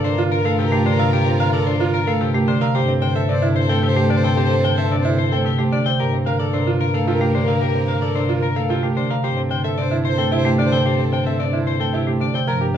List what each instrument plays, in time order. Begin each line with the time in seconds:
Already playing: bass clarinet G2, violin section F4 A#4
0.04 grand piano D4, soprano saxophone A#4, clean electric guitar C5
0.18 marimba D3, grand piano F4
0.32 clean electric guitar A#4, grand piano A#4
0.36 soprano saxophone A#4
0.45 marimba A3, grand piano A4, clean electric guitar F5
0.59 marimba C3, clean electric guitar G4
0.64 soprano saxophone A#4
0.72 marimba A3, grand piano G4
0.86 marimba D3, grand piano D4, clean electric guitar C5
0.92 soprano saxophone A#4
0.99 marimba C3, grand piano A#4, clean electric guitar F5
1.13 grand piano G4, clean electric guitar A#4
1.20 soprano saxophone A#4
1.26 grand piano C4
1.40 marimba D3, grand piano A#4, clean electric guitar F5
1.49 soprano saxophone A#4
1.53 grand piano A4, clean electric guitar D5
1.67 grand piano D4, clean electric guitar C5
1.77 grand piano F4, soprano saxophone A#4
1.81 marimba D3
1.94 clean electric guitar A#4, grand piano A#4
2.04 marimba A3, grand piano A4, soprano saxophone A#4, clean electric guitar F5
2.21 marimba C3, clean electric guitar G4
2.33 marimba A3, grand piano G4, soprano saxophone A#4
2.48 marimba D3, grand piano D4, clean electric guitar C5
2.61 marimba C3, grand piano A#4, clean electric guitar F5
2.75 bass clarinet G2, violin section C4 A4, grand piano G4, clean electric guitar C5, soprano saxophone C5
2.88 grand piano C4
3.02 marimba D3, grand piano C5, soprano saxophone C5, clean electric guitar G5
3.15 grand piano A4, clean electric guitar E5
3.29 marimba C3, grand piano D4, soprano saxophone C5, clean electric guitar D5
3.42 marimba D3, grand piano E4
3.56 grand piano C5, clean electric guitar C5, soprano saxophone C5
3.69 marimba A3, grand piano A4, clean electric guitar G5
3.83 marimba C3, clean electric guitar G4
3.88 soprano saxophone C5
3.96 marimba A3, grand piano G4
4.10 marimba D3, grand piano D4, clean electric guitar D5
4.17 soprano saxophone C5
4.23 marimba C3, grand piano C5, clean electric guitar G5
4.37 grand piano G4, clean electric guitar C5
4.44 soprano saxophone C5
4.50 grand piano C4
4.64 marimba D3, grand piano C5, clean electric guitar G5
4.73 soprano saxophone C5
4.77 grand piano A4, clean electric guitar E5
4.91 marimba C3, grand piano D4, clean electric guitar D5
5.01 marimba D3, grand piano E4, soprano saxophone C5
5.18 grand piano C5, clean electric guitar C5
5.30 marimba A3, grand piano A4, soprano saxophone C5, clean electric guitar G5
5.45 marimba C3, clean electric guitar G4
5.58 marimba A3, grand piano G4, soprano saxophone C5
5.72 marimba D3, grand piano D4, clean electric guitar D5
5.86 marimba C3, grand piano C5, clean electric guitar G5
5.99 bass clarinet G2, violin section A#3 A#4, grand piano G4, soprano saxophone A#4, clean electric guitar A#4
6.13 grand piano C4
6.26 marimba D3, grand piano A#4, soprano saxophone A#4, clean electric guitar F5
6.40 grand piano A4, clean electric guitar D5
6.53 marimba C3, grand piano D4, soprano saxophone A#4, clean electric guitar C5
6.67 marimba D3, grand piano F4
6.80 grand piano A#4, clean electric guitar A#4
6.85 soprano saxophone A#4
6.94 marimba A3, grand piano A4, clean electric guitar F5
7.07 marimba C3, grand piano F4, clean electric guitar G4
7.13 soprano saxophone A#4
7.21 marimba A3, grand piano G4
7.35 marimba D3, grand piano D4, clean electric guitar C5
7.41 soprano saxophone A#4
7.48 marimba C3, grand piano A#4, clean electric guitar F5
7.61 grand piano G4, clean electric guitar A#4
7.70 soprano saxophone A#4
7.75 grand piano C4
7.88 marimba D3, grand piano A#4, clean electric guitar F5
7.97 soprano saxophone A#4
8.02 grand piano A4, clean electric guitar D5
8.15 marimba C3, grand piano D4, clean electric guitar C5
8.26 marimba D3, grand piano F4, soprano saxophone A#4
8.42 clean electric guitar A#4, grand piano A#4
8.54 marimba A3, grand piano A4, soprano saxophone A#4, clean electric guitar F5
8.70 marimba C3, grand piano F4, clean electric guitar G4
8.82 marimba A3, grand piano G4, soprano saxophone A#4
8.96 marimba D3, grand piano D4, clean electric guitar C5
9.10 marimba C3, grand piano A#4, clean electric guitar F5
9.23 bass clarinet G2, violin section C4 A4, grand piano G4, soprano saxophone C5, clean electric guitar C5
9.37 grand piano C4
9.50 marimba D3, grand piano C5, soprano saxophone C5, clean electric guitar G5
9.64 grand piano A4, clean electric guitar E5
9.78 marimba C3, grand piano D4, soprano saxophone C5, clean electric guitar D5
9.91 marimba D3, grand piano E4
10.05 grand piano C5, clean electric guitar C5, soprano saxophone C5
10.18 marimba A3, grand piano A4, clean electric guitar G5
10.31 marimba C3, grand piano E4, clean electric guitar G4
10.37 soprano saxophone C5
10.45 marimba A3, grand piano G4
10.58 marimba D3, grand piano D4, clean electric guitar D5
10.65 soprano saxophone C5
10.72 marimba C3, grand piano C5, clean electric guitar G5
10.86 grand piano G4, clean electric guitar C5
10.93 soprano saxophone C5
10.99 grand piano C4
11.12 marimba D3, grand piano C5, clean electric guitar G5
11.22 soprano saxophone C5
11.26 grand piano A4, clean electric guitar E5
11.39 marimba C3, grand piano D4, clean electric guitar D5
11.50 marimba D3, grand piano E4, soprano saxophone C5
11.66 grand piano C5, clean electric guitar C5
11.78 marimba A3, grand piano A4, soprano saxophone C5, clean electric guitar G5
11.93 marimba C3, grand piano E4, clean electric guitar G4
12.06 marimba A3, grand piano G4, soprano saxophone C5
12.20 marimba D3, grand piano D4, clean electric guitar D5
12.34 marimba C3, grand piano C5, clean electric guitar G5
12.47 bass clarinet G2, marimba F3, violin section A#3 A#4, grand piano A#4, soprano saxophone A#4, clean electric guitar A#4
12.61 grand piano G4